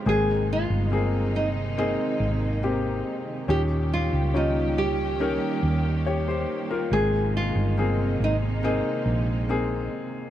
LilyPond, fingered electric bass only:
\new Staff \with { instrumentName = "Fingered electric bass" } { \clef bass \time 4/4 \key aes \major \tempo 4 = 70 aes,,8. g,,4. r16 aes,,4 r8 | ees,8. des,4. r16 ees,4 r8 | aes,,8. g,,8. aes,,8. r16 bes,,4 r8 | }